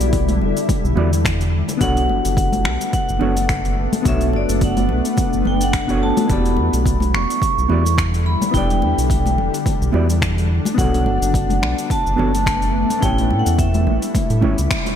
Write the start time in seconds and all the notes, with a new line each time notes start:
Already playing: D3 G3 B3 E4 F#4 G4 D5
0.00 B1, open hi-hat, cabasa
0.13 kick, open hi-hat, cabasa
0.28 open hi-hat, high conga, cabasa
0.41 E1, low conga
0.57 open hi-hat, cabasa
0.69 kick, open hi-hat, muted conga, cabasa
0.84 B1, cabasa
0.95 E2 B3 E4 F#4 G4 D5, high conga, low conga
1.13 open hi-hat, cabasa
1.25 finger snap, kick, open hi-hat, cabasa
1.41 open hi-hat, cabasa
1.68 open hi-hat, muted conga, high conga, cabasa
1.77 B1 A3 B3 D4 F#4, kick, open hi-hat, cabasa
1.82 A4 C#5 F#5
1.97 open hi-hat, cabasa
2.09 F#1, muted conga
2.25 F#1, open hi-hat, cabasa
2.37 kick, open hi-hat, cabasa
2.53 open hi-hat, high conga, cabasa
2.65 B1, finger snap, low conga
2.81 open hi-hat, cabasa
2.93 F#5, kick, open hi-hat, cabasa
3.09 F#1, cabasa
3.19 F#1 B3 D4 F#4 A4 C#5, high conga, low conga
3.37 open hi-hat, muted conga, cabasa
3.49 finger snap, kick, open hi-hat, cabasa
3.65 open hi-hat, cabasa
3.93 open hi-hat, muted conga, high conga, cabasa
4.03 B1 B3 D4 F#4, kick, open hi-hat, cabasa
4.08 A4 C#5 E5
4.21 open hi-hat, cabasa
4.33 F#1 D5, muted conga
4.49 F#1, open hi-hat, cabasa
4.61 F#5, kick, open hi-hat, cabasa
4.77 open hi-hat, high conga, cabasa
4.89 B1, low conga
5.05 open hi-hat, cabasa
5.17 kick, open hi-hat, muted conga, cabasa
5.33 F#1, cabasa
5.45 F#1 G5, high conga, low conga
5.61 F#5, open hi-hat, cabasa
5.73 finger snap, kick, open hi-hat, cabasa
5.87 B3 D4 F#4 A4 C#5, open hi-hat, cabasa
6.03 A5
6.17 open hi-hat, muted conga, high conga, cabasa
6.26 E1 B3 E4 F#4, kick, open hi-hat, cabasa
6.30 D3 G3 E4 G4 D5 B5
6.45 open hi-hat, cabasa
6.57 E2, muted conga
6.73 B1, open hi-hat, cabasa
6.86 kick, open hi-hat, cabasa
7.00 open hi-hat, high conga, cabasa
7.14 E1 C#6, finger snap, low conga
7.30 open hi-hat, cabasa
7.42 kick, open hi-hat, cabasa
7.58 B1, cabasa
7.68 E2 B3 E4 F#4 G4 D5, high conga, low conga
7.85 open hi-hat, muted conga, cabasa
7.98 finger snap, kick, open hi-hat, cabasa
8.14 open hi-hat, cabasa
8.26 B5
8.41 open hi-hat, muted conga, high conga, cabasa
8.51 E1 B3 D4 E4 G5, kick, open hi-hat, cabasa
8.56 G4 D5
8.70 open hi-hat, cabasa
8.82 E2, muted conga
8.98 B1, open hi-hat, cabasa
9.10 kick, open hi-hat, cabasa
9.26 open hi-hat, high conga, cabasa
9.38 E1, low conga
9.54 open hi-hat, cabasa
9.66 kick, open hi-hat, muted conga, cabasa
9.81 B1, cabasa
9.92 E2 B3 E4 F#4 G4 D5, high conga, low conga
10.10 open hi-hat, cabasa
10.22 finger snap, kick, open hi-hat, cabasa
10.38 open hi-hat, cabasa
10.65 open hi-hat, muted conga, high conga, cabasa
10.74 B1 B3 D4 F#4, kick
10.78 A3 B3 A4 C#5 F#5, open hi-hat, cabasa
10.94 open hi-hat, cabasa
11.06 F#1, muted conga
11.22 F#1, open hi-hat, cabasa
11.34 kick, open hi-hat, cabasa
11.50 open hi-hat, high conga, cabasa
11.62 B1, finger snap, low conga
11.78 open hi-hat, cabasa
11.90 A5, kick, open hi-hat, cabasa
12.06 F#1, cabasa
12.16 F#1 B3 D4 F#4 A4 C#5, high conga, low conga
12.35 open hi-hat, muted conga, cabasa
12.46 finger snap, kick, open hi-hat, cabasa
12.62 open hi-hat, cabasa
12.90 open hi-hat, muted conga, high conga, cabasa
12.99 A1 G3 A3 C#4 E4 G5, kick, open hi-hat, cabasa
13.04 G4 C#5
13.18 open hi-hat, cabasa
13.30 A2, muted conga
13.39 F#5
13.46 E2, open hi-hat, cabasa
13.59 E5, kick, open hi-hat, cabasa
13.74 open hi-hat, high conga, cabasa
13.87 A1, low conga
14.02 open hi-hat, cabasa
14.15 kick, open hi-hat, muted conga, cabasa
14.30 A2, open hi-hat, cabasa
14.41 G1 A3 C#4 E4 G4 C#5, high conga, low conga
14.58 C#2, open hi-hat, cabasa
14.71 finger snap, kick, open hi-hat, cabasa
14.86 open hi-hat, muted conga, cabasa